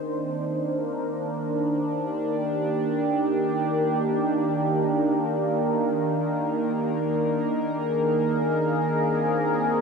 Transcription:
0.00 9.81 D#3 medium
0.00 9.81 A#3 medium
0.00 0.98 C4 medium
0.00 9.81 D4 medium
0.00 2.17 C5 medium
0.61 9.81 A#4 medium
2.02 7.14 G4 medium
7.71 9.81 G#4 medium
9.09 9.81 C4 medium

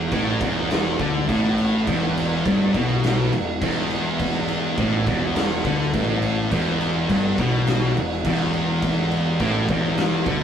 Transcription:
0.00 0.12 E2 loud
0.00 10.43 E3 medium
0.00 10.43 B3 medium
0.00 10.43 F#4 medium
0.11 0.39 A1 loud
0.11 0.41 A2 loud
0.11 kick loud
0.11 crash medium
0.40 0.95 E1 loud
0.40 0.99 E2 loud
0.40 kick loud
0.40 crash medium
0.71 snare loud
0.71 crash medium
0.99 1.27 D2 loud
0.99 1.28 D3 loud
0.99 kick loud
0.99 crash medium
1.29 1.83 A1 loud
1.29 1.86 A2 loud
1.29 kick loud
1.29 crash loud
1.58 crash medium
1.87 2.41 E1 loud
1.87 2.44 E2 loud
1.87 kick loud
1.87 crash medium
2.17 crash medium
2.46 2.72 G1 loud
2.46 2.74 G2 loud
2.46 kick loud
2.46 crash medium
2.74 3.29 B1 loud
2.74 3.32 B2 loud
2.74 kick loud
2.74 crash medium
3.03 snare loud
3.03 crash medium
3.32 3.59 E1 loud
3.32 3.56 E2 medium
3.32 crash medium
3.61 4.73 E1 loud
3.61 4.77 E2 loud
3.61 kick loud
3.61 crash loud
3.91 crash medium
4.19 kick loud
4.19 crash medium
4.48 crash medium
4.78 5.05 A1 medium
4.78 5.06 A2 loud
4.78 kick loud
4.78 crash medium
5.06 5.60 E1 loud
5.06 5.64 E2 loud
5.06 kick loud
5.06 crash medium
5.36 snare loud
5.36 crash loud
5.64 5.91 D2 loud
5.64 5.93 D3 loud
5.64 kick loud
5.64 crash medium
5.81 snare soft
5.93 6.47 A1 loud
5.93 6.51 A2 loud
5.93 kick loud
5.93 crash medium
6.22 crash medium
6.51 7.05 E1 loud
6.51 7.08 E2 loud
6.51 kick loud
6.51 crash medium
6.81 crash medium
7.09 7.36 G1 medium
7.09 7.37 G2 loud
7.09 kick loud
7.09 crash medium
7.38 7.92 B1 loud
7.38 7.96 B2 loud
7.38 kick loud
7.38 crash medium
7.67 snare loud
7.67 crash loud
7.96 8.23 E1 medium
7.96 8.20 E2 medium
7.96 crash medium
8.12 snare soft
8.24 9.36 E1 loud
8.24 9.40 E2 loud
8.24 kick loud
8.24 crash loud
8.53 crash medium
8.82 kick loud
8.82 crash medium
9.11 crash medium
9.39 9.66 A1 medium
9.39 9.69 A2 loud
9.39 kick loud
9.39 crash medium
9.69 10.22 E1 loud
9.69 10.26 E2 loud
9.69 kick loud
9.69 crash medium
9.98 snare loud
9.98 crash medium
10.26 10.43 D2 loud
10.26 10.43 D3 loud
10.26 kick loud
10.26 crash medium

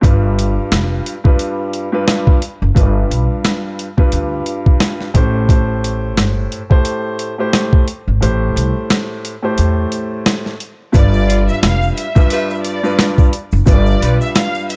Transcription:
0.01 0.57 G1 loud
0.01 1.13 G2 medium
0.01 1.14 G3 medium
0.01 1.14 F4 medium
0.01 1.14 B4 medium
0.01 kick loud
0.01 closed hi-hat medium
0.39 closed hi-hat medium
0.72 0.98 F1 medium
0.72 cross-stick medium
0.72 snare loud
0.72 closed hi-hat medium
1.06 closed hi-hat medium
1.24 1.87 G2 medium
1.24 1.87 G3 medium
1.24 1.87 F4 medium
1.24 1.88 B4 medium
1.24 kick loud
1.39 closed hi-hat medium
1.73 closed hi-hat medium
1.92 2.38 G2 medium
1.92 2.38 G3 medium
1.92 2.39 F4 medium
1.92 2.39 B4 loud
2.08 cross-stick medium
2.08 snare loud
2.08 closed hi-hat medium
2.27 kick medium
2.42 closed hi-hat medium
2.62 2.73 F#1 medium
2.75 3.03 G1 loud
2.75 3.86 G2 medium
2.75 3.87 G3 medium
2.75 3.87 F4 medium
2.75 3.87 B4 medium
2.75 kick loud
2.75 closed hi-hat medium
3.11 3.26 B1 medium
3.11 closed hi-hat medium
3.44 cross-stick medium
3.44 snare loud
3.44 closed hi-hat medium
3.79 closed hi-hat medium
3.97 5.06 G2 medium
3.97 5.07 G3 medium
3.97 5.07 F4 medium
3.97 5.07 B4 loud
3.97 kick loud
4.12 4.39 D2 medium
4.12 closed hi-hat medium
4.46 closed hi-hat medium
4.66 kick medium
4.80 cross-stick medium
4.80 snare loud
4.80 closed hi-hat medium
5.01 snare soft
5.14 6.18 A1 loud
5.14 5.46 A2 loud
5.14 5.47 A3 medium
5.14 5.47 G4 medium
5.14 5.47 C5 loud
5.14 kick medium
5.14 closed hi-hat medium
5.49 6.60 A2 medium
5.49 6.60 A3 medium
5.49 6.60 G4 medium
5.49 6.61 C5 loud
5.49 kick loud
5.49 closed hi-hat medium
5.84 closed hi-hat medium
6.17 6.44 G1 medium
6.17 cross-stick medium
6.17 snare loud
6.17 closed hi-hat medium
6.52 closed hi-hat medium
6.70 7.32 A2 medium
6.70 7.32 A3 medium
6.70 7.33 G4 medium
6.70 7.33 C5 loud
6.70 kick loud
6.85 closed hi-hat medium
7.19 closed hi-hat medium
7.38 7.84 A2 medium
7.38 7.84 A3 medium
7.38 7.84 G4 medium
7.38 7.85 C5 loud
7.53 cross-stick medium
7.53 snare loud
7.53 closed hi-hat medium
7.73 kick medium
7.88 closed hi-hat medium
8.08 8.19 G#1 medium
8.21 8.48 A1 loud
8.21 9.32 A2 medium
8.21 9.32 A3 medium
8.21 9.33 G4 medium
8.21 9.33 C5 loud
8.21 closed hi-hat medium
8.56 8.71 C2 medium
8.56 closed hi-hat medium
8.90 cross-stick medium
8.90 snare loud
8.90 closed hi-hat medium
9.25 closed hi-hat medium
9.43 10.52 A2 medium
9.43 10.52 A3 medium
9.43 10.52 G4 medium
9.43 10.53 C5 medium
9.58 9.85 E2 medium
9.58 closed hi-hat medium
9.92 closed hi-hat medium
10.26 cross-stick medium
10.26 snare loud
10.26 closed hi-hat medium
10.46 snare soft
10.60 closed hi-hat medium
10.92 11.48 G1 loud
10.92 12.04 G2 medium
10.92 12.05 G3 medium
10.92 12.05 F4 medium
10.92 12.05 B4 medium
10.92 11.45 D5 loud
10.92 kick loud
10.92 closed hi-hat medium
10.92 shaker medium
11.14 shaker soft
11.27 11.43 D3 medium
11.27 11.43 B3 medium
11.27 11.43 F4 medium
11.27 closed hi-hat medium
11.48 11.61 E5 medium
11.48 shaker medium
11.63 11.89 F1 medium
11.63 11.94 F5 medium
11.63 cross-stick medium
11.63 snare loud
11.63 closed hi-hat loud
11.63 shaker medium
11.82 shaker soft
11.96 12.61 E5 medium
11.96 closed hi-hat medium
11.96 shaker medium
12.15 12.78 G2 medium
12.15 12.78 G3 medium
12.15 12.78 F4 medium
12.15 12.79 B4 loud
12.15 kick loud
12.15 shaker medium
12.30 12.53 G3 loud
12.30 12.53 F4 loud
12.30 12.53 B4 loud
12.30 closed hi-hat medium
12.30 shaker medium
12.50 shaker medium
12.63 13.14 D5 medium
12.63 closed hi-hat medium
12.63 shaker medium
12.83 13.29 G2 loud
12.83 13.29 G3 medium
12.83 13.30 F4 medium
12.83 13.30 B4 loud
12.83 shaker medium
12.99 cross-stick medium
12.99 snare loud
12.99 closed hi-hat medium
12.99 shaker medium
13.18 kick medium
13.18 shaker soft
13.33 closed hi-hat medium
13.52 13.64 F#1 medium
13.52 shaker soft
13.66 13.94 G1 loud
13.66 14.76 G2 medium
13.66 14.76 G3 medium
13.66 14.76 F4 medium
13.66 14.76 B4 loud
13.66 14.18 D5 loud
13.66 kick loud
13.66 closed hi-hat medium
13.66 shaker medium
13.86 shaker soft
14.01 14.17 B1 medium
14.01 14.17 G3 medium
14.01 14.17 F4 medium
14.01 14.17 B4 medium
14.01 closed hi-hat medium
14.21 14.34 E5 medium
14.21 shaker medium
14.35 14.66 F5 medium
14.35 cross-stick medium
14.35 snare loud
14.35 closed hi-hat loud
14.35 shaker medium
14.55 shaker soft
14.69 14.76 E5 medium
14.69 closed hi-hat medium
14.69 shaker medium

